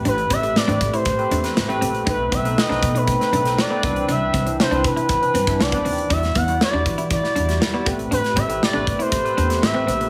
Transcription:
<<
  \new Staff \with { instrumentName = "Analog synth lead" } { \time 4/4 \key a \dorian \tempo 4 = 119 b'8 e''8 d''8. c''4.~ c''16 r8 | b'8 e''8 dis''8. b'4~ b'16 d''4 | e''4 c''8 b'4. d''4 | e''8 fis''8 d''4 d''4. r8 |
b'8 e''8 d''8. c''4~ c''16 e''4 | }
  \new Staff \with { instrumentName = "Clean electric guitar" } { \time 4/4 \key a \dorian d'16 r16 c'16 r8 d'16 r16 e'16 r8 d'16 r8 c'16 c'16 r16 | dis'16 r16 b16 r8 d'16 r16 dis'16 r8 d'16 r8 b16 b16 r16 | d'16 r16 c'16 r8 d'16 r16 e'16 r8 c'16 r8 b16 c'16 r16 | d'16 r16 b16 r8 d'16 r16 e'16 r8 d'16 r8 b16 b16 r16 |
d'16 r16 c'16 r8 d'16 r16 e'16 r8 d'16 r8 c'16 c'16 r16 | }
  \new Staff \with { instrumentName = "Tine electric piano" } { \time 4/4 \key a \dorian <a c' g' b'>8 r16 <a c' g' b'>8 <a c' g' b'>8. r16 <a c' g' b'>8 <a c' g' b'>8 <a c' g' b'>8 r16 | <a c' dis' b'>8 r16 <a c' dis' b'>8 <a c' dis' b'>8. r16 <a c' dis' b'>8 <a c' dis' b'>8 <a c' dis' b'>16 <e c' d' b'>8~ | <e c' d' b'>8 r16 <e c' d' e'>8 <e c' d' b'>8. r16 <e c' d' b'>8 <e c' d' e'>8 <e c' d' b'>8 r16 | <g e' fis' d''>8 r16 <g e' fis' d''>8 <g e' fis' d''>8. r16 <g e' fis' d''>8 <g e' fis' d''>8 <g e' fis' d''>16 <a c' g' b'>8~ |
<a c' g' b'>8 r16 <a c' g' b'>8 <a b c' g' b'>8. r16 <a c' g' b'>8 <a c' g' c''>8 <a c' g' b'>8 r16 | }
  \new Staff \with { instrumentName = "Upright bass" } { \clef bass \time 4/4 \key a \dorian a,,8 a,,8 r16 a,,16 a,8. r16 e,8 a,,8 ais,,8 | b,,8 b,,8 r16 b,,16 b,8. r16 b,,8 r8 c,8 | c,8 c,8 r16 c,16 c8. r16 g,8 c,8 dis,8 | e,8 e,8 r16 e,16 e8. r16 e,8 r8 a,,8 |
a,,8 a,,8 r16 a,,16 a,8. r16 e,8 a,,8 ais,,8 | }
  \new DrumStaff \with { instrumentName = "Drums" } \drummode { \time 4/4 hh16 hh16 <hh bd>16 hh16 sn16 hh16 <hh bd>16 hh16 <hh bd>16 hh16 hh16 <hh sn>16 sn16 hh16 hh16 hh16 | <hh bd>8 <hh bd>16 hh16 sn16 sn16 <hh bd>16 hh16 <hh bd>16 <hh sn>16 hh16 <hh sn>16 sn8 <hh bd>16 hh16 | hh8 <hh bd>16 hh16 sn16 hh16 <hh bd>16 hh16 <hh bd>16 hh16 hh16 <hh bd>16 sn16 <hh bd>16 hho16 hh16 | <hh bd>16 <hh sn>16 <hh bd>16 hh16 sn8 <hh bd>16 hh16 <hh bd>16 sn16 hh16 <hh sn>16 sn8 <hh bd>16 hh16 |
hh16 <hh sn>16 <hh bd>16 hh16 sn8 <hh bd>16 hh16 <hh bd>16 hh16 hh16 <hh sn>16 sn8 hh16 hh16 | }
>>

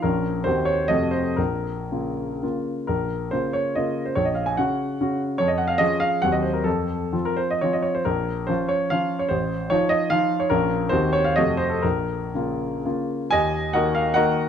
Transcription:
<<
  \new Staff \with { instrumentName = "Grand piano" } { \time 3/4 \key bes \minor \tempo 4 = 139 bes'4 c''8 des''8 ees''8 c''8 | bes'2 r4 | bes'4 c''8 des''8 ees''8. c''16 | des''16 ees''16 f''16 aes''16 ges''4. r8 |
des''16 ees''16 ges''16 f''16 ees''8 f''8 ges''16 ees''16 c''16 bes'16 | a'4~ a'16 bes'16 c''16 ees''16 des''16 ees''16 des''16 c''16 | bes'4 c''8 des''8 f''8. des''16 | c''4 des''8 ees''8 f''8. des''16 |
bes'4 c''8 des''16 f''16 ees''8 c''16 a'16 | bes'2 r4 | \key ees \minor <ees'' aes''>4 <bes' ees'' ges''>8 f''8 <bes' ees'' ges''>4 | }
  \new Staff \with { instrumentName = "Grand piano" } { \time 3/4 \key bes \minor <bes,, f des' f'>4 <ees, ees c' ges'>4 <f, c a ges'>4 | bes,,4 <des bes f'>4 <des bes f'>4 | bes,,4 <des bes f'>4 <des bes f'>4 | bes,,4 <des des' ges'>4 <des des' ges'>4 |
f,4 <f des' aes'>4 <ees, ges c' ges'>4 | f,4 <f c' f'>4 <f c' f'>4 | bes,,4 <f des' f'>4 <f des' f'>4 | a,,4 <f ees' f'>4 <f ees' f'>4 |
<bes,, f des' f'>4 <ees, ees c' ges'>4 <f, c a ges'>4 | bes,,4 <des bes f'>4 <des bes f'>4 | \key ees \minor ees,4 <ees bes ges'>4 <ees bes ges'>4 | }
>>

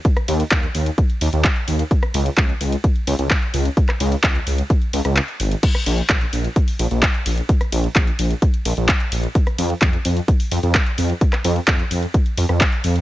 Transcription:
<<
  \new Staff \with { instrumentName = "Detuned saw bass" } { \clef bass \time 4/4 \key des \major \tempo 4 = 129 r8 ees,16 r16 ees,16 r16 ees,16 r8. ees,16 ees,16 r8 ees,16 r16 | r8 des,16 r16 des,16 r16 des,16 r8. des,16 des,16 r8 des,16 r16 | r8 des,16 r16 des,16 r16 des,16 r8. des,16 des,16 r8 aes,,16 r16 | r8 bes,,16 r16 bes,,16 r16 bes,,16 r8. bes,,16 bes,,16 r8 bes,,16 r16 |
r8 bes,,16 r16 bes,,16 r16 bes,,16 r8. bes,,16 bes,,16 r8 bes,,16 r16 | r8 f,16 r16 f,16 r16 f,16 r8. f,16 f,16 r8 f,16 r16 | r8 f,16 r16 f,16 r16 f,16 r8. f,16 f,16 r8 f,16 r16 | }
  \new DrumStaff \with { instrumentName = "Drums" } \drummode { \time 4/4 <hh bd>16 <hh ss>16 <hho cymr>16 hh16 <hc hh bd>16 hh16 <hho cymr>16 hh16 <hh bd>16 hh16 <hho cymr>16 hh16 <hc hh bd>16 hh16 <hho cymr>16 hh16 | <hh bd>16 <hh ss>16 <hho cymr>16 hh16 <hc hh bd>16 hh16 <hho cymr>16 hh16 <hh bd>16 hh16 <hho cymr>16 hh16 <hc hh bd>16 hh16 <hho cymr>16 hh16 | <hh bd>16 <hc hh ss>16 <hho cymr>16 hh16 <hc hh bd>16 hh16 <hho cymr>16 hh16 <hh bd>16 hh16 <hho cymr>16 <hh ss>16 <hc hh>16 hh16 <hho cymr>16 hh16 | <cymc hh bd>16 <hh ss>16 <hho cymr>16 hh16 <hc hh bd>16 hh16 <hho cymr>16 hh16 <hh bd>16 hho16 <hho cymr>16 hh16 <hc hh bd>16 hh16 <hho cymr>16 hh16 |
<hh bd>16 <hh ss>16 <hho cymr>16 hh16 <hc hh bd>16 hh16 <hho cymr>16 hh16 <hh bd>16 hh16 <hho cymr>16 hh16 <hc hh bd>16 hh16 <hho cymr>16 hh16 | <hh bd>16 <hh ss>16 <hho cymr>16 hh16 <hc hh bd>16 hh16 <hho cymr>16 hh16 <hh bd>16 hho16 <hho cymr>16 hh16 <hc hh bd>16 hh16 <hho cymr>16 hh16 | <hh bd>16 <hc hh ss>16 <hho cymr>16 hh16 <hc hh bd>16 hh16 <hho cymr>16 hh16 <hh bd>16 hh16 <hho cymr>16 <hh ss>16 <hc hh bd>16 hh16 <hho cymr>16 hh16 | }
>>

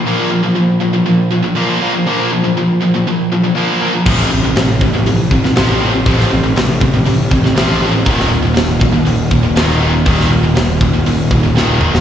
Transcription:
<<
  \new Staff \with { instrumentName = "Analog synth pad" } { \time 4/4 \key bes \major \tempo 4 = 120 <bes f' c''>1~ | <bes f' c''>1 | <f c' g'>1~ | <f c' g'>1 |
<ees bes f'>1~ | <ees bes f'>1 | }
  \new Staff \with { instrumentName = "Distorted electric guitar" } { \clef bass \time 4/4 \key bes \major <bes, f bes>8 <bes, f>16 <bes, f>16 <bes, f>8 <bes, f>16 <bes, f>16 <bes, f>8 <bes, f>16 <bes, f>16 <bes, f bes>8 <bes, f bes>16 <bes, f>16 | <bes, f bes>8 <bes, f>16 <bes, f>16 <bes, f>8 <bes, f>16 <bes, f>16 <bes, f>8 <bes, f>16 <bes, f>16 <bes, f bes>8 <bes, f bes>16 <bes, f>16 | <f, c f>8 <f, c>16 <f, c>16 <f, c>8 <f, c>16 <f, c>16 <f, c>8 <f, c>16 <f, c>16 <f, c f>8 <f, c f>16 <f, c>16 | <f, c f>8 <f, c>16 <f, c>16 <f, c>8 <f, c>16 <f, c>16 <f, c>8 <f, c>16 <f, c>16 <f, c f>8 <f, c f>16 <f, c>16 |
<ees, bes, ees>8 <ees, bes,>16 <ees, bes,>16 <ees, bes,>8 <ees, bes,>16 <ees, bes,>16 <ees, bes,>8 <ees, bes,>16 <ees, bes,>16 <ees, bes, ees>8 <ees, bes, ees>16 <ees, bes,>16 | <ees, bes, ees>8 <ees, bes,>16 <ees, bes,>16 <ees, bes,>8 <ees, bes,>16 <ees, bes,>16 <ees, bes,>8 <ees, bes,>16 <ees, bes,>16 <ees, bes, ees>8 <ees, bes, ees>16 <ees, bes,>16 | }
  \new Staff \with { instrumentName = "Distorted electric guitar" } { \clef bass \time 4/4 \key bes \major <bes, f bes>8 <bes, f>16 <bes, f>16 <bes, f>8 <bes, f>16 <bes, f>16 <bes, f>8 <bes, f>16 <bes, f>16 <bes, f bes>8 <bes, f bes>16 <bes, f>16 | <bes, f bes>8 <bes, f>16 <bes, f>16 <bes, f>8 <bes, f>16 <bes, f>16 <bes, f>8 <bes, f>16 <bes, f>16 <bes, f bes>8 <bes, f bes>16 <bes, f>16 | <f, c f>8 <f, c>16 <f, c>16 <f, c>8 <f, c>16 <f, c>16 <f, c>8 <f, c>16 <f, c>16 <f, c f>8 <f, c f>16 <f, c>16 | <f, c f>8 <f, c>16 <f, c>16 <f, c>8 <f, c>16 <f, c>16 <f, c>8 <f, c>16 <f, c>16 <f, c f>8 <f, c f>16 <f, c>16 |
<ees, bes, ees>8 <ees, bes,>16 <ees, bes,>16 <ees, bes,>8 <ees, bes,>16 <ees, bes,>16 <ees, bes,>8 <ees, bes,>16 <ees, bes,>16 <ees, bes, ees>8 <ees, bes, ees>16 <ees, bes,>16 | <ees, bes, ees>8 <ees, bes,>16 <ees, bes,>16 <ees, bes,>8 <ees, bes,>16 <ees, bes,>16 <ees, bes,>8 <ees, bes,>16 <ees, bes,>16 <ees, bes, ees>8 <ees, bes, ees>16 <ees, bes,>16 | }
  \new Staff \with { instrumentName = "Picked electric bass" } { \clef bass \time 4/4 \key bes \major r1 | r1 | a,,8 a,,8 a,,8 a,,8 a,,4 a,,4 | a,,8 a,,8 a,,8 a,,8 a,,8 a,,8 a,,8 a,,8 |
ees,,8 ees,,8 ees,,8 ees,,8 ees,,4 ees,,4 | ees,,8 ees,,8 ees,,8 ees,,8 ees,,8 ees,,8 ees,,8 ees,,8 | }
  \new DrumStaff \with { instrumentName = "Drums" } \drummode { \time 4/4 r4 r4 r4 r4 | r4 r4 r4 r4 | <cymc bd>4 <hho sn>8 bd8 hho8 bd16 sn16 <hho sn>4 | <hho bd>16 sn8. <hho sn>8 bd8 hho8 bd16 sn16 <hho sn>4 |
<hho bd>16 sn8. <hho sn>8 bd8 hho8 bd8 <hho sn>4 | <hho bd>16 sn8. <hho sn>8 bd8 hho8 bd8 sn8 toml16 sn16 | }
>>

